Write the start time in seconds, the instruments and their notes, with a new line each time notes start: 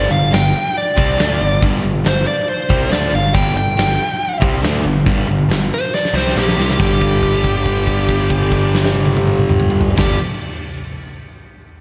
Already playing: distorted electric guitar G3, lead electric guitar D5
0.09 picked electric bass G1, distorted electric guitar G2 D3, lead electric guitar F5
0.31 picked electric bass G1, distorted electric guitar G2 D3, lead electric guitar G5, snare, open hi-hat
0.77 lead electric guitar D5, open hi-hat
0.96 picked electric bass C2, distorted electric guitar C3 G3 C4, kick
1.18 picked electric bass D2, distorted electric guitar D3 A3 D4, snare, open hi-hat
1.40 picked electric bass G1, distorted electric guitar G2 D3
1.62 picked electric bass G1, distorted electric guitar G2 D3 G3, kick, open hi-hat
1.83 picked electric bass G1, distorted electric guitar G2 D3
2.04 picked electric bass G1, distorted electric guitar G2 D3, lead electric guitar C5, snare, open hi-hat
2.27 lead electric guitar D5
2.49 lead electric guitar C5, open hi-hat
2.69 picked electric bass C2, distorted electric guitar C3 G3 C4, kick
2.90 picked electric bass D2, distorted electric guitar D3 A3 D4, lead electric guitar D5, snare, open hi-hat
3.12 picked electric bass G1, distorted electric guitar G2 D3, lead electric guitar F5
3.34 picked electric bass G1, distorted electric guitar G2 D3 G3, lead electric guitar G5, kick, open hi-hat
3.54 picked electric bass G1, distorted electric guitar G2 D3, lead electric guitar G5
3.77 picked electric bass G1, distorted electric guitar G2 D3, snare, open hi-hat
4.21 open hi-hat
4.40 picked electric bass C2, distorted electric guitar C3 G3 C4, kick
4.62 picked electric bass D2, distorted electric guitar D3 A3 D4, snare, open hi-hat
4.84 picked electric bass G1, distorted electric guitar G2 D3
5.06 picked electric bass G1, distorted electric guitar G2 D3 G3, kick, open hi-hat
5.27 picked electric bass G1, distorted electric guitar G2 D3
5.48 picked electric bass G1, distorted electric guitar G2 D3, snare, open hi-hat
5.74 lead electric guitar C5
5.94 lead electric guitar D5, snare
6.05 snare
6.13 picked electric bass C2, distorted electric guitar C3 G3 C4, lead electric guitar C5, snare
6.28 snare
6.36 picked electric bass A#1, distorted electric guitar A#2 F3 A#3, lead electric guitar G4, snare
6.49 snare
6.57 picked electric bass C2, distorted electric guitar C3 G3 C4, snare
6.70 snare
6.78 picked electric bass G1, distorted electric guitar G2 D3 G3, lead electric guitar G4, kick, crash
7.01 kick, crash
7.12 crash
7.23 kick, crash
7.33 crash
7.44 kick, crash
7.55 crash
7.66 kick, crash
7.76 crash
7.86 kick, crash
7.98 crash
8.09 kick, crash
8.19 crash
8.30 kick, crash
8.41 crash
8.51 kick, crash
8.62 crash
8.75 snare
8.85 snare
8.95 high tom
9.05 high tom
9.17 high tom
9.27 mid tom
9.38 mid tom
9.49 mid tom
9.60 mid tom
9.70 mid tom
9.81 floor tom
9.91 floor tom
9.96 picked electric bass G1, distorted electric guitar G2 D3 G3, lead electric guitar G4, kick, snare, crash